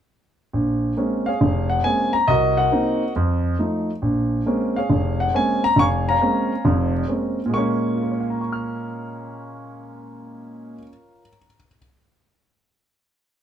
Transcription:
0.53 0.91 A#1 medium
0.97 1.27 G#3 soft
0.97 1.28 A#3 soft
0.97 1.28 C4 soft
0.97 1.28 C#4 soft
1.26 2.11 G#4 medium
1.26 2.10 C#5 medium
1.26 1.67 F5 medium
1.41 1.79 F1 medium
1.70 1.83 F#5 medium
1.84 2.15 G#3 soft
1.84 2.15 A#3 soft
1.84 2.15 C4 soft
1.84 2.15 C#4 soft
1.84 2.11 G#5 medium
2.13 2.28 A#5 medium
2.28 2.66 C2 medium
2.28 3.12 F#4 medium
2.28 2.57 A#4 medium
2.28 2.57 D#5 medium
2.57 3.12 A#4 medium
2.57 3.12 D#5 medium
2.57 3.11 F#5 medium
2.71 3.02 A#3 soft
2.71 3.02 C4 soft
2.71 3.02 D#4 medium
3.16 3.53 F2 medium
3.59 3.89 F3 soft
3.59 3.90 A3 soft
3.59 3.90 D#4 medium
4.02 4.40 A#1 medium
4.46 4.77 G#3 soft
4.46 4.77 A#3 medium
4.46 4.77 C4 soft
4.46 4.77 C#4 medium
4.76 5.60 G#4 medium
4.76 5.60 C#5 medium
4.76 5.21 F5 medium
4.90 5.28 F1 medium
5.20 5.33 F#5 medium
5.34 5.64 G#3 soft
5.34 5.64 A#3 soft
5.34 5.64 C4 soft
5.34 5.65 C#4 medium
5.34 5.62 G#5 medium
5.64 5.77 A#5 medium
5.76 6.15 F1 medium
5.76 6.08 F5 medium
5.76 5.86 C#6 loud
5.80 6.62 G#5 medium
6.09 6.91 C#5 medium
6.09 6.91 F5 medium
6.09 6.62 A#5 medium
6.21 6.51 G#3 medium
6.21 6.51 A#3 soft
6.21 6.52 C4 soft
6.21 6.52 C#4 medium
6.65 7.02 F1 medium
6.65 7.03 F2 medium
7.08 7.39 G#3 soft
7.08 7.39 A#3 soft
7.08 7.39 C4 soft
7.08 7.39 C#4 soft
7.46 10.75 A#2 medium
7.46 10.79 G#3 medium
7.54 10.83 A#3 medium
7.54 10.87 C#4 medium
7.54 8.40 C#6 medium
7.95 11.21 F4 soft
8.03 11.28 A#4 soft
8.11 11.36 C#5 soft
8.20 11.46 F5 soft
8.30 11.56 A#5 soft
8.41 11.67 C#6 soft
8.53 11.78 F6 soft

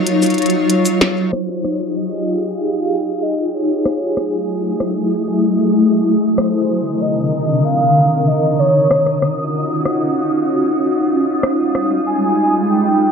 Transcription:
0.00 1.30 F#3 medium
0.00 1.29 D#4 medium
0.00 1.30 F4 medium
0.00 0.70 C#5 loud
0.00 1.30 C#5 loud
0.07 closed hi-hat medium
0.22 closed hi-hat soft
0.22 shaker medium
0.26 closed hi-hat soft
0.30 closed hi-hat soft
0.34 closed hi-hat soft
0.38 closed hi-hat soft
0.42 closed hi-hat soft
0.46 closed hi-hat soft
0.50 closed hi-hat soft
0.70 closed hi-hat medium
0.85 closed hi-hat medium
0.85 shaker medium
1.01 snare loud
1.33 3.83 D#4 medium
1.33 3.83 F4 medium
1.33 3.83 G4 medium
1.33 6.34 G#4 medium
1.33 1.97 C5 loud
1.33 13.12 D#6 medium
1.33 cross-stick medium
1.64 cross-stick soft
1.96 2.60 D#5 loud
2.59 3.24 F5 loud
3.22 3.55 D#5 loud
3.54 4.80 C#5 loud
3.85 6.36 F#3 medium
3.85 6.36 A3 medium
3.85 6.36 E4 medium
3.85 cross-stick medium
4.17 cross-stick soft
4.80 cross-stick medium
6.38 8.88 C3 medium
6.38 8.88 D3 medium
6.38 8.88 D#3 medium
6.38 8.88 A#4 medium
6.38 7.03 C5 loud
6.38 cross-stick medium
7.01 7.64 D#5 loud
7.64 8.29 F5 loud
8.27 8.59 D#5 loud
8.59 9.81 C#5 loud
8.91 11.41 C#4 medium
8.91 13.12 D#4 medium
8.91 13.12 F4 medium
8.91 11.41 F#4 medium
8.91 cross-stick medium
9.06 cross-stick soft
9.22 cross-stick soft
9.85 cross-stick medium
11.43 13.12 G3 medium
11.43 13.12 G#3 medium
11.43 cross-stick medium
11.75 cross-stick soft
12.06 12.71 G#5 loud
12.70 13.12 G5 loud

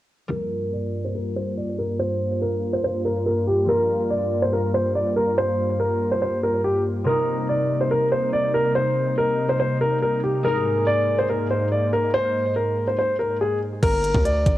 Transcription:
0.28 7.03 G2 medium
0.28 3.65 G3 medium
0.28 10.41 G3 medium
0.28 10.41 A#3 medium
0.28 3.64 F4 medium
0.28 7.03 F4 medium
0.28 0.70 A#4 loud
0.33 3.66 A#4 medium
0.73 1.03 D5 medium
1.04 1.13 C5 medium
1.15 1.32 A#4 medium
1.36 1.53 C5 medium
1.57 1.74 D5 medium
1.78 1.95 A#4 medium
1.99 2.39 C5 medium
2.42 2.72 A#4 medium
2.73 2.82 C5 medium
2.84 3.01 C5 medium
3.05 3.22 A#4 medium
3.26 3.43 A#4 medium
3.47 3.64 G4 medium
3.66 7.12 G3 medium
3.66 7.03 F4 medium
3.66 4.08 A#4 loud
3.71 7.04 A#4 medium
4.11 4.40 D5 medium
4.42 4.51 C5 medium
4.53 4.70 A#4 medium
4.74 4.91 C5 medium
4.95 5.12 D5 medium
5.16 5.33 A#4 medium
5.38 5.77 C5 loud
5.80 6.10 A#4 medium
6.12 6.20 C5 medium
6.22 6.39 C5 medium
6.43 6.60 A#4 medium
6.64 6.81 G4 medium
7.04 10.50 C3 medium
7.04 10.41 C3 medium
7.04 10.41 A#3 medium
7.04 13.79 D#4 medium
7.04 7.46 A#4 medium
7.09 10.42 D#4 medium
7.49 7.79 D5 medium
7.81 7.89 C5 medium
7.91 8.08 A#4 medium
8.12 8.29 C5 medium
8.33 8.50 D5 medium
8.54 8.71 A#4 medium
8.75 9.15 C5 medium
9.18 9.48 A#4 medium
9.49 9.58 C5 medium
9.60 9.77 C5 medium
9.81 9.98 A#4 medium
10.02 10.19 A#4 medium
10.24 10.40 G4 medium
10.43 13.79 G#2 medium
10.43 13.88 G#3 medium
10.43 13.79 G#3 medium
10.43 13.79 A#3 medium
10.43 13.79 D#4 medium
10.43 10.84 A#4 medium
10.48 13.80 A#4 medium
10.87 11.17 D5 medium
11.18 11.27 C5 medium
11.29 11.46 A#4 medium
11.50 11.67 C5 medium
11.72 11.88 D5 medium
11.93 12.09 A#4 medium
12.14 12.53 C5 loud
12.56 12.86 A#4 medium
12.87 12.96 C5 medium
12.99 13.15 C5 medium
13.19 13.36 A#4 medium
13.41 13.57 G#4 medium
13.82 14.13 G1 loud
13.82 14.22 A#4 loud
13.82 kick loud
13.82 closed hi-hat medium
13.82 crash medium
14.04 closed hi-hat medium
14.14 14.45 D2 loud
14.14 kick loud
14.25 14.55 D5 medium
14.25 closed hi-hat medium
14.46 14.58 G1 loud
14.46 kick loud
14.46 closed hi-hat medium

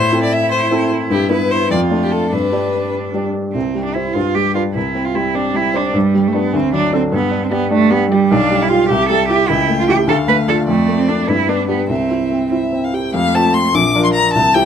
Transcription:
0.00 0.12 A2 medium
0.00 1.73 E4 medium
0.00 0.22 C5 medium
0.12 0.67 C4 soft
0.12 0.67 E4 soft
0.12 0.68 A4 soft
0.23 0.35 D5 medium
0.33 0.51 E5 medium
0.52 0.90 C5 medium
0.71 1.07 C4 soft
0.71 1.07 E4 soft
0.71 1.08 A4 soft
1.10 1.30 G2 soft
1.10 1.30 G4 medium
1.29 1.66 B3 soft
1.29 1.67 E4 soft
1.29 1.67 B4 soft
1.29 1.53 B4 medium
1.51 1.71 C5 medium
1.71 1.91 F2 soft
1.71 2.32 F4 medium
1.71 1.79 D5 medium
1.90 2.28 A3 soft
1.90 2.28 D4 soft
1.90 2.28 D5 soft
2.03 2.13 G4 soft
2.11 2.34 A4 soft
2.32 2.52 G2 soft
2.32 3.23 D4 soft
2.32 2.93 B4 medium
2.52 3.10 G3 soft
2.52 3.10 D4 soft
2.52 3.10 D5 soft
3.14 3.51 G3 soft
3.14 3.51 D4 soft
3.14 3.51 D5 soft
3.53 4.13 C2 soft
3.53 3.82 C4 soft
3.75 4.07 G3 soft
3.84 3.96 D4 soft
3.94 4.15 E4 soft
3.94 4.13 E4 soft
3.94 4.13 C5 soft
3.94 4.10 E5 soft
4.14 4.73 G2 soft
4.14 4.37 F4 medium
4.35 4.67 G3 soft
4.35 4.54 G4 medium
4.55 4.73 D4 soft
4.55 4.63 F4 soft
4.55 4.73 B4 soft
4.55 4.70 B4 soft
4.74 5.91 C2 soft
4.74 5.07 E4 medium
4.95 5.27 C4 soft
5.05 5.17 F4 medium
5.15 5.47 G3 soft
5.15 5.36 E4 medium
5.15 5.30 C5 soft
5.34 5.67 C4 soft
5.34 5.57 D4 medium
5.54 5.86 G3 soft
5.54 5.77 E4 medium
5.74 5.98 D4 medium
5.74 5.94 C5 soft
5.74 5.90 C5 soft
5.94 6.51 G2 soft
5.94 6.29 G3 medium
6.15 6.46 G3 soft
6.27 6.38 A3 soft
6.33 6.57 B3 medium
6.33 6.52 D4 soft
6.33 6.48 B4 medium
6.33 6.52 B4 soft
6.53 7.11 D2 soft
6.53 6.74 C4 medium
6.73 7.05 F#3 soft
6.73 6.93 D4 medium
6.93 7.02 C4 medium
6.93 7.11 D4 soft
6.93 7.11 A4 soft
6.93 7.08 D5 medium
7.12 8.27 G2 medium
7.12 7.45 B3 medium
7.31 7.63 D4 soft
7.43 7.52 C4 medium
7.51 7.83 G3 soft
7.51 7.72 B3 medium
7.51 7.67 D5 medium
7.71 7.93 A3 medium
7.71 8.03 D4 soft
7.90 8.23 G3 soft
7.90 8.11 B3 medium
8.11 8.33 G3 medium
8.11 8.31 G4 soft
8.11 8.26 D5 medium
8.31 8.88 B1 medium
8.31 8.63 D4 medium
8.31 8.91 F5 medium
8.51 8.82 G3 soft
8.62 8.70 E4 medium
8.69 8.89 F4 medium
8.69 8.88 F4 soft
8.69 8.88 G4 soft
8.89 9.47 C2 medium
8.89 9.09 G4 medium
8.89 9.48 E5 medium
9.09 9.42 G3 soft
9.09 9.28 A4 medium
9.28 9.47 E4 soft
9.28 9.50 G4 medium
9.28 9.47 G4 soft
9.48 10.07 C#2 soft
9.48 9.78 E4 medium
9.48 10.09 G5 medium
9.68 10.00 A3 soft
9.79 9.88 F4 medium
9.88 10.06 E4 soft
9.88 9.97 G4 medium
9.88 10.07 G4 soft
10.07 10.66 D2 medium
10.07 10.17 A4 medium
10.07 10.68 F5 soft
10.28 10.60 A3 soft
10.28 10.36 B4 medium
10.48 10.66 D4 soft
10.48 10.66 F4 soft
10.48 10.56 A4 medium
10.68 11.26 F2 soft
10.68 10.99 A3 medium
10.68 11.29 D5 soft
10.88 11.20 A3 soft
10.98 11.09 C4 medium
11.08 11.31 D4 medium
11.08 11.26 D4 soft
11.08 11.27 A4 soft
11.28 11.88 G2 soft
11.28 11.50 E4 medium
11.28 11.89 B4 soft
11.47 11.81 B3 soft
11.47 11.68 D4 medium
11.68 11.89 B3 soft
11.68 11.87 D4 soft
11.68 11.88 G4 soft
11.89 13.10 C2 soft
11.89 12.52 C4 soft
11.89 12.47 E5 soft
12.11 12.44 E4 soft
12.31 12.64 C4 soft
12.52 12.85 E4 soft
12.52 12.85 E5 soft
12.73 13.06 C4 soft
12.84 12.95 F5 soft
12.94 13.14 G4 soft
12.94 13.14 G5 soft
13.14 13.34 F2 medium
13.14 13.71 A3 medium
13.14 13.36 F5 medium
13.35 13.71 C4 soft
13.35 13.71 F4 soft
13.35 13.71 A4 soft
13.35 13.55 A5 medium
13.54 13.76 C6 medium
13.74 13.94 A#1 medium
13.74 14.31 F3 medium
13.74 14.04 D6 medium
13.95 14.31 D4 soft
13.95 14.31 F4 soft
13.95 14.32 A#4 soft
14.04 14.08 C6 medium
14.13 14.32 A#5 medium
14.33 14.55 C2 medium
14.33 14.65 E3 medium
14.33 14.56 A5 medium
14.54 14.65 C4 soft
14.54 14.65 E4 soft
14.54 14.65 G4 soft
14.54 14.65 G5 medium

